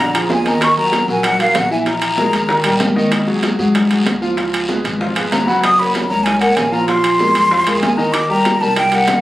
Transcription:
Already playing: A#1 A#5
0.00 D3 D4 D5, long guiro
0.14 F3 F4 G#4, high conga, high timbale
0.29 D#2 G#5, low bongo, high conga, low timbale, short guiro
0.45 D#3 D#4 D#5 A#5, low bongo, high conga, high timbale, short guiro
0.61 D#3 D#4 D#5 C#6, high bongo, high conga, high timbale, long guiro
0.77 F#3 F#4 A#4 A#5, high bongo, high conga
0.92 high bongo, high conga, high timbale, low timbale, short guiro
1.08 A#1 F#3 F#4 A#4 G#5, high bongo, short guiro
1.23 F#5, high bongo, high conga, low conga, high timbale, long guiro
1.39 F#3 F#4 A#4 F5, high bongo, high conga, low conga, high timbale
1.55 A#1 F#5, high bongo, low bongo, high conga, high timbale, low timbale, short guiro
1.70 E3 E4 E5 G#5, high conga, short guiro
1.86 E3 E4 E5 A#5, high bongo, high conga, high timbale, long guiro
2.02 high bongo, high conga, high timbale
2.17 G#3 G#4 A#4, high bongo, high conga, low timbale, short guiro
2.33 D#2, high bongo, high timbale, short guiro
2.49 D#3 D#4 D#5, high bongo, high conga, long guiro
2.64 A#1 G3 G4 A#4, high bongo, high conga, high timbale
2.80 G#1, high bongo, low bongo, high conga, high timbale, low timbale, short guiro
2.96 D#3 D#4 D#5, high conga, short guiro
3.11 D#3 D#4 D#5, high bongo, high conga, high timbale, long guiro
3.27 F#3 F#4 G#4, high bongo
3.43 high bongo, high conga, high timbale, low timbale, short guiro
3.59 G#2 F#3 F#4 G#4, high bongo, high conga, short guiro
3.74 high bongo, high conga, low conga, high timbale, long guiro
3.90 F#3 F#4 G#4, high bongo, high conga, low conga, high timbale
4.05 C#2, high bongo, low bongo, high conga, high timbale, low timbale, short guiro
4.22 F3 F4 F5, high conga, short guiro
4.37 F3 F4 F5, high bongo, high timbale, long guiro
4.53 high bongo, high conga, high timbale
4.69 G#3 G#4 B4, high bongo, high conga, low timbale, short guiro
4.84 G#1, high bongo, high timbale, short guiro
5.00 F3 F4 F5, high bongo, long guiro
5.16 G#1 G#3 G#4 B4, high bongo, high timbale
5.32 F#1 A#5, high bongo, low bongo, high conga, high timbale, low timbale, short guiro
5.47 F#3 F#4 F#5 B5, high conga, short guiro
5.63 F#3 F#4 D#6, high bongo, high conga, high timbale, long guiro
5.79 A#3 F#4 C#5 B5, high bongo
5.95 high bongo, high conga, high timbale, low timbale, short guiro
6.08 C#2 A#3 A#4 C#5 A#5, high bongo, high conga, short guiro
6.24 G#5, high bongo, high conga, low conga, high timbale, long guiro
6.41 A#3 A#4 C#5 F#5, high bongo, high conga, high timbale
6.56 A#1 G#5, high bongo, low bongo, high conga, high timbale, low timbale, short guiro
6.72 F3 F4 F5 A#5, high conga, short guiro
6.88 F3 F4 F5 C6, high bongo, high conga, high timbale, long guiro
7.04 high bongo, high timbale
7.19 G#3 G#4 A#4, high bongo, high conga, low timbale, short guiro
7.35 F2, high bongo, high timbale, short guiro
7.51 F3 F4 F5, high bongo, high conga, long guiro
7.67 F2 G#3 G#4 A#4, high bongo, high conga, high timbale
7.82 D#2 G#5, high bongo, low bongo, high conga, high timbale, low timbale, short guiro
7.97 D#3 D#4 D#5 A#5, high conga, short guiro
8.13 D#3 D#4 D#5 D6, high bongo, high conga, high timbale, long guiro
8.30 G3 G4 A#4 A#5, high bongo, high conga
8.45 high bongo, high conga, high timbale, low timbale, short guiro
8.61 C2 G3 G4 A#4 A5, high bongo, high conga, short guiro
8.76 G5, high bongo, high conga, low conga, high timbale, long guiro
8.92 G3 G4 A#4 F#5, high bongo, high conga, high timbale
9.08 F2, high bongo, low bongo, high conga, high timbale, low timbale, short guiro

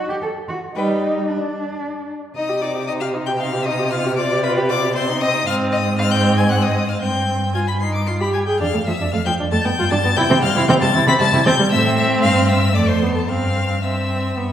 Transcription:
0.09 G4
0.22 A4
0.48 F#4
0.75 G3 D#4 B4 G5
1.29 D4
2.35 C3 D#4 D#5 D#6
2.49 G4
2.62 D#4 D5 D6
2.75 G4
2.87 D#4 D#5 D#6
3.00 G4 F5 F6
3.14 D#4
3.26 G4 G5 G6
3.38 D#4 F5 F6
3.53 G4
3.65 D#4 D#5 D#6
3.79 G4
3.90 F4 F5 F6
4.06 G4
4.17 F4 D5 D6
4.32 G4
4.43 F4 B4 B5
4.58 G4
4.69 F4 D5 D6
4.84 G4
4.95 C4 C5 C6
5.09 D#4
5.21 C4 D#5 D#6
5.34 D#4
5.47 G#2 C4 F5 F6
5.72 D#5 D#6
5.98 C4 F5 F6
6.11 G5 G6
6.37 G#5 G#6
6.49 C4 F#5 F#6
6.62 D#5 D#6
6.89 F5 F6
7.02 G2 C4 G5 G6
7.54 F4 G#5 G#6
7.67 B5 B6
7.81 D#4 C6 C7
7.94 D6 D7
8.06 F4 C6 C7
8.21 G4 B5 B6
8.33 G#5 G#6
8.47 G#4 G5 G6
8.60 F2 D4 F5 F6
8.73 F2 A3
8.86 F2 F3 E5 E6
9.00 F2 D4
9.12 F2 A3 F5 F6
9.26 F2 F3 G5 G6
9.39 F2 D4
9.52 F2 A3 A5 A6
9.64 G2 B3 G5 G6
9.78 G2 F4
9.90 G2 D4 A5 A6
10.04 G2 B3
10.17 C3 E4 G5 G6
10.30 C3 C4
10.43 C3 G3 F5 F6
10.55 C3 E4
10.68 C3 C4 G5 G6
10.81 C3 G3 A5 A6
10.94 C3 E4
11.07 C3 C4 B5 B6
11.20 C3 G3 A5 A6
11.32 C3 E4
11.46 C3 C4 G5 G6
11.58 C3 G3
11.71 A2 C4 E5 E6
11.97 E5 E6
12.23 G2 F5 F6
12.48 E5 E6
12.74 F2 A3 D5 D6
12.88 C5 C6
13.03 B3
13.15 A4 A5
13.28 G2 C4 F5 F6
13.83 C4 E5 E6
14.37 G2 B3

